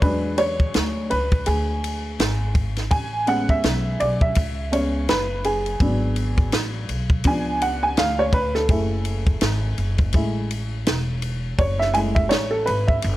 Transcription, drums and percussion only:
0.02 kick loud
0.02 ride medium
0.38 ride medium
0.60 kick medium
0.74 snare loud
0.74 hi-hat pedal medium
0.74 ride medium
1.11 ride medium
1.32 kick medium
1.32 ride soft
1.46 ride medium
1.84 ride medium
2.20 snare loud
2.20 hi-hat pedal medium
2.20 ride medium
2.55 kick loud
2.55 ride medium
2.77 snare soft
2.77 ride soft
2.91 kick loud
2.91 ride medium
3.27 ride medium
3.49 kick medium
3.49 ride soft
3.63 snare loud
3.63 hi-hat pedal medium
3.63 ride medium
4.00 ride medium
4.21 kick loud
4.35 kick loud
4.35 ride medium
4.73 ride medium
5.09 snare loud
5.09 hi-hat pedal medium
5.09 ride medium
5.44 ride medium
5.66 ride soft
5.80 kick loud
5.80 ride medium
6.16 ride medium
6.37 kick medium
6.37 ride soft
6.52 snare medium
6.52 hi-hat pedal soft
6.52 ride medium
6.89 ride medium
7.10 kick medium
7.24 kick loud
7.24 ride medium
7.62 ride medium
7.97 snare loud
7.97 hi-hat pedal soft
7.97 ride medium
8.33 kick loud
8.33 ride medium
8.55 snare soft
8.69 kick loud
8.69 ride medium
9.05 ride medium
9.26 kick medium
9.26 ride soft
9.41 snare loud
9.41 hi-hat pedal soft
9.41 ride medium
9.78 ride soft
9.98 kick medium
9.98 ride soft
10.13 kick medium
10.13 ride medium
10.51 ride medium
10.87 snare loud
10.87 hi-hat pedal soft
10.87 ride medium
11.22 ride medium
11.59 kick loud
11.59 ride medium
11.81 snare soft
11.94 ride medium
12.16 kick medium
12.16 ride soft
12.31 snare loud
12.31 hi-hat pedal medium
12.31 ride medium
12.67 ride medium
12.88 kick medium
13.02 ride medium

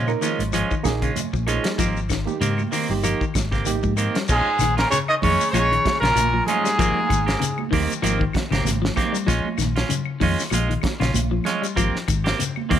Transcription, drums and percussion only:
0.07 high conga medium
0.07 claves medium
0.07 shekere soft
0.21 closed hi-hat soft
0.21 high conga medium
0.21 shekere medium
0.39 closed hi-hat soft
0.39 low conga medium
0.39 shekere soft
0.53 closed hi-hat medium
0.53 high conga soft
0.53 claves medium
0.53 shekere medium
0.71 kick medium
0.71 shekere soft
0.84 kick medium
0.84 snare medium
0.84 closed hi-hat soft
0.84 high conga medium
0.84 claves medium
0.84 shekere medium
1.02 kick medium
1.02 closed hi-hat soft
1.02 shekere soft
1.16 closed hi-hat medium
1.16 high conga medium
1.16 low conga medium
1.16 shekere medium
1.34 kick medium
1.34 shekere soft
1.47 closed hi-hat medium
1.47 claves medium
1.47 shekere medium
1.64 snare medium
1.64 closed hi-hat medium
1.64 shekere soft
1.79 kick medium
1.79 closed hi-hat medium
1.79 high conga soft
1.79 low conga medium
1.79 shekere medium
1.97 shekere soft
2.09 kick medium
2.09 snare medium
2.09 closed hi-hat soft
2.09 claves medium
2.09 shekere medium
2.27 high conga medium
2.27 shekere soft
2.42 closed hi-hat medium
2.42 shekere medium
2.58 high conga medium
2.58 claves medium
2.58 shekere soft
2.73 open hi-hat medium
2.73 high conga medium
2.73 shekere medium
2.90 low conga medium
2.90 shekere soft
3.04 closed hi-hat medium
3.04 high conga soft
3.04 claves medium
3.04 shekere medium
3.21 kick medium
3.21 shekere soft
3.34 kick medium
3.34 snare medium
3.34 closed hi-hat medium
3.34 high conga medium
3.34 claves medium
3.34 shekere medium
3.52 kick medium
3.52 snare soft
3.52 shekere soft
3.66 closed hi-hat medium
3.66 high conga medium
3.66 low conga medium
3.66 shekere medium
3.83 kick medium
3.83 high conga medium
3.83 shekere soft
3.97 closed hi-hat medium
3.97 claves medium
3.97 shekere medium
4.15 snare medium
4.15 closed hi-hat medium
4.15 shekere soft
4.28 kick loud
4.28 snare soft
4.28 crash medium
4.28 shekere medium
4.59 snare soft
4.59 closed hi-hat soft
4.59 claves medium
4.59 shekere medium
4.78 snare medium
4.78 closed hi-hat soft
4.78 shekere soft
4.92 snare soft
4.92 closed hi-hat medium
4.92 shekere medium
5.08 claves medium
5.22 kick medium
5.22 open hi-hat medium
5.22 high conga medium
5.22 low conga medium
5.22 shekere soft
5.41 shekere medium
5.54 closed hi-hat medium
5.54 high conga medium
5.54 claves medium
5.54 shekere medium
5.73 closed hi-hat soft
5.85 kick medium
5.85 snare medium
5.85 closed hi-hat medium
5.85 high conga medium
5.85 claves medium
6.03 snare medium
6.03 closed hi-hat soft
6.03 shekere soft
6.16 closed hi-hat medium
6.16 high conga medium
6.16 shekere medium
6.47 closed hi-hat medium
6.47 high conga medium
6.47 low conga medium
6.47 claves medium
6.47 shekere soft
6.65 snare soft
6.65 closed hi-hat soft
6.65 shekere medium
6.79 kick medium
6.79 closed hi-hat medium
6.79 shekere medium
6.95 high conga medium
7.10 kick medium
7.10 closed hi-hat medium
7.10 claves medium
7.10 shekere medium
7.28 snare medium
7.28 closed hi-hat soft
7.28 shekere soft
7.42 closed hi-hat medium
7.42 shekere medium
7.58 high conga medium
7.58 claves medium
7.73 kick medium
7.73 open hi-hat medium
7.73 high conga medium
7.73 low conga medium
7.73 shekere soft
7.90 closed hi-hat soft
7.90 shekere medium
8.03 closed hi-hat medium
8.03 high conga medium
8.03 claves medium
8.03 shekere medium
8.21 kick medium
8.33 kick medium
8.33 snare medium
8.33 closed hi-hat medium
8.33 high conga medium
8.33 claves medium
8.52 snare medium
8.52 closed hi-hat soft
8.52 shekere soft
8.65 snare soft
8.65 closed hi-hat medium
8.65 high conga medium
8.65 shekere medium
8.85 snare medium
8.96 kick medium
8.96 snare soft
8.96 closed hi-hat medium
8.96 high conga medium
8.96 low conga medium
8.96 claves medium
8.96 shekere soft
9.15 closed hi-hat soft
9.15 shekere medium
9.28 kick medium
9.28 snare soft
9.28 closed hi-hat medium
9.28 shekere medium
9.45 high conga medium
9.58 snare soft
9.58 closed hi-hat soft
9.58 claves medium
9.58 shekere medium
9.76 snare medium
9.76 closed hi-hat soft
9.76 shekere soft
9.90 closed hi-hat medium
9.90 low conga medium
9.90 shekere medium
10.05 claves medium
10.21 kick medium
10.21 open hi-hat medium
10.21 high conga medium
10.21 low conga medium
10.21 shekere soft
10.39 snare soft
10.39 shekere medium
10.50 closed hi-hat medium
10.50 high conga medium
10.50 claves medium
10.50 shekere medium
10.71 closed hi-hat soft
10.82 kick medium
10.82 snare medium
10.82 closed hi-hat soft
10.82 high conga medium
10.82 claves medium
11.01 snare medium
11.01 closed hi-hat soft
11.01 shekere soft
11.14 closed hi-hat medium
11.14 high conga medium
11.14 shekere medium
11.44 snare soft
11.44 closed hi-hat medium
11.44 low conga medium
11.44 claves medium
11.44 shekere soft
11.64 closed hi-hat soft
11.64 shekere medium
11.77 kick medium
11.77 closed hi-hat medium
11.77 shekere medium
11.96 snare soft
12.08 kick medium
12.08 closed hi-hat medium
12.08 claves medium
12.08 shekere medium
12.26 snare medium
12.26 closed hi-hat soft
12.26 shekere soft
12.40 closed hi-hat medium
12.40 shekere medium
12.56 high conga medium
12.56 claves medium
12.71 kick medium
12.71 open hi-hat medium
12.71 high conga medium
12.71 low conga medium
12.71 shekere soft

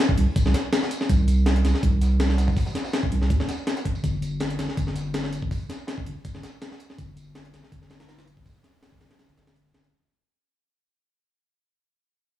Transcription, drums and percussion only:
0.09 kick loud
0.18 closed hi-hat medium
0.18 open hi-hat medium
0.36 kick loud
0.36 closed hi-hat medium
0.36 tambourine medium
0.46 snare soft
0.54 snare soft
0.54 closed hi-hat medium
0.54 tambourine medium
0.65 closed hi-hat soft
0.73 snare loud
0.73 closed hi-hat medium
0.73 tambourine medium
0.82 snare soft
0.82 snare loud
0.91 closed hi-hat medium
0.91 tambourine medium
1.01 snare soft
1.01 closed hi-hat soft
1.09 kick loud
1.09 closed hi-hat medium
1.09 tambourine medium
1.28 closed hi-hat medium
1.28 tambourine medium
1.46 snare loud
1.46 closed hi-hat medium
1.46 tambourine medium
1.56 closed hi-hat soft
1.65 snare medium
1.65 closed hi-hat medium
1.65 tambourine medium
1.74 snare soft
1.83 kick loud
1.83 closed hi-hat medium
1.83 tambourine medium
2.01 snare soft
2.01 closed hi-hat medium
2.01 tambourine medium
2.11 closed hi-hat soft
2.20 snare loud
2.20 closed hi-hat medium
2.20 tambourine medium
2.30 snare medium
2.38 snare loud
2.38 closed hi-hat medium
2.38 tambourine medium
2.47 kick medium
2.47 snare loud
2.47 tambourine medium
2.56 kick loud
2.56 snare loud
2.56 open hi-hat medium
2.56 tambourine medium
2.66 snare medium
2.66 tambourine medium
2.75 snare medium
2.75 snare loud
2.75 closed hi-hat medium
2.75 tambourine medium
2.85 snare loud
2.85 tambourine medium
2.93 snare loud
2.93 closed hi-hat medium
2.93 tambourine medium
3.03 kick medium
3.12 closed hi-hat medium
3.12 open hi-hat medium
3.22 snare soft
3.30 kick loud
3.30 closed hi-hat medium
3.30 tambourine medium
3.40 snare medium
3.49 snare soft
3.49 snare loud
3.49 closed hi-hat medium
3.49 tambourine medium
3.67 snare loud
3.67 closed hi-hat medium
3.67 tambourine medium
3.77 snare loud
3.77 closed hi-hat soft
3.77 tambourine medium
3.85 kick medium
3.85 closed hi-hat medium
3.95 tambourine medium
4.04 kick loud
4.04 closed hi-hat medium
4.04 tambourine medium
4.22 closed hi-hat medium
4.22 tambourine medium
4.40 snare loud
4.40 closed hi-hat medium
4.40 tambourine medium
4.50 closed hi-hat soft
4.59 snare medium
4.59 closed hi-hat medium
4.59 tambourine medium
4.69 snare soft
4.77 kick loud
4.77 closed hi-hat medium
4.77 tambourine medium
4.87 snare soft
4.96 snare soft
4.96 closed hi-hat medium
4.96 tambourine medium
5.07 closed hi-hat soft
5.14 snare loud
5.14 closed hi-hat medium
5.14 tambourine medium
5.24 snare medium
5.33 closed hi-hat medium
5.33 tambourine medium
5.42 kick loud
5.42 closed hi-hat soft
5.51 kick loud
5.51 open hi-hat medium
5.51 tambourine medium
5.70 snare medium
5.70 closed hi-hat medium
5.70 tambourine medium
5.87 snare loud
5.87 closed hi-hat medium
5.87 tambourine medium
5.98 kick medium
6.06 closed hi-hat medium
6.06 open hi-hat medium
6.25 kick loud
6.25 closed hi-hat medium
6.25 tambourine medium
6.35 snare soft
6.43 snare soft
6.43 closed hi-hat medium
6.43 tambourine medium
6.54 closed hi-hat soft
6.62 snare loud
6.62 closed hi-hat medium
6.62 tambourine medium
6.72 snare soft
6.72 snare loud
6.79 closed hi-hat medium
6.79 tambourine medium
6.90 snare soft
6.90 closed hi-hat soft
6.98 kick loud
6.98 closed hi-hat medium
6.98 tambourine medium
7.17 closed hi-hat medium
7.17 tambourine medium
7.35 snare loud
7.35 closed hi-hat medium
7.35 tambourine medium
7.45 closed hi-hat soft
7.54 snare medium
7.54 closed hi-hat medium
7.54 tambourine medium
7.64 snare soft
7.72 kick loud
7.72 closed hi-hat medium
7.72 tambourine medium
7.82 snare soft
7.90 snare soft
7.90 snare loud
7.90 closed hi-hat medium
7.90 tambourine medium
8.00 snare loud
8.00 closed hi-hat medium
8.08 snare loud
8.08 closed hi-hat medium
8.08 tambourine medium
8.19 snare medium
8.19 closed hi-hat medium
8.27 closed hi-hat medium
8.27 tambourine medium
8.37 kick medium
8.37 closed hi-hat soft
8.46 kick loud
8.46 open hi-hat medium
8.46 tambourine medium
8.64 snare medium
8.64 closed hi-hat medium
8.64 tambourine medium
8.83 snare loud
8.83 closed hi-hat medium
8.83 tambourine medium
8.92 kick medium
9.01 snare medium
9.01 closed hi-hat medium
9.01 open hi-hat medium
9.11 snare medium
9.11 closed hi-hat medium
9.19 snare medium
9.19 closed hi-hat medium
9.19 tambourine medium
9.29 closed hi-hat soft
9.38 snare soft
9.38 closed hi-hat medium
9.47 snare medium
9.47 closed hi-hat medium
9.56 closed hi-hat medium
9.66 open hi-hat medium
9.74 snare medium
9.74 closed hi-hat medium
9.74 tambourine medium
9.84 closed hi-hat soft

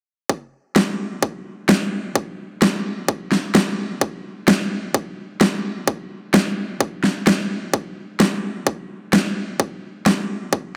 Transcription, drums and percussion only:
0.29 kick loud
0.76 kick loud
0.76 snare loud
1.23 kick loud
1.69 kick loud
1.69 snare loud
2.15 kick loud
2.62 kick loud
2.62 snare loud
3.08 kick loud
3.32 snare medium
3.55 kick loud
3.55 snare loud
4.01 kick loud
4.48 kick loud
4.48 snare loud
4.94 kick loud
5.41 kick loud
5.41 snare loud
5.88 kick loud
6.34 kick loud
6.34 snare loud
6.81 kick loud
7.04 snare medium
7.27 kick loud
7.27 snare loud
7.74 kick loud
8.20 kick loud
8.20 snare loud
8.67 kick loud
9.13 kick loud
9.13 snare loud
9.60 kick loud
10.06 kick loud
10.06 snare loud
10.53 kick loud

